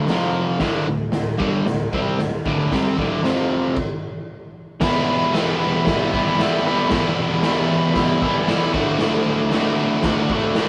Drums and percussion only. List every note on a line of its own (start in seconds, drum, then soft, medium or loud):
0.07 snare loud
0.07 open hi-hat medium
0.59 kick loud
0.59 snare loud
0.59 open hi-hat medium
1.12 snare loud
1.12 open hi-hat medium
1.40 kick loud
1.66 snare loud
1.66 open hi-hat medium
1.93 kick loud
2.19 snare loud
2.19 open hi-hat medium
2.46 kick loud
2.72 kick loud
2.72 snare loud
2.72 open hi-hat medium
2.98 kick loud
3.24 snare loud
3.24 open hi-hat medium
3.76 kick loud
3.76 crash medium
4.81 kick loud
4.81 snare loud
4.81 crash loud
4.81 crash medium
5.35 snare loud
5.35 crash medium
5.86 kick loud
5.86 snare loud
5.86 crash medium
6.13 kick medium
6.39 snare loud
6.39 crash medium
6.90 kick loud
6.90 snare loud
6.90 crash medium
7.43 snare loud
7.43 crash medium
7.95 kick loud
7.95 snare loud
7.95 crash medium
8.22 kick medium
8.48 snare loud
8.48 crash medium
8.74 kick loud
8.99 snare loud
8.99 crash medium
9.51 snare loud
9.51 crash medium
10.02 kick loud
10.02 snare loud
10.02 crash medium
10.30 kick loud
10.55 snare loud
10.55 crash medium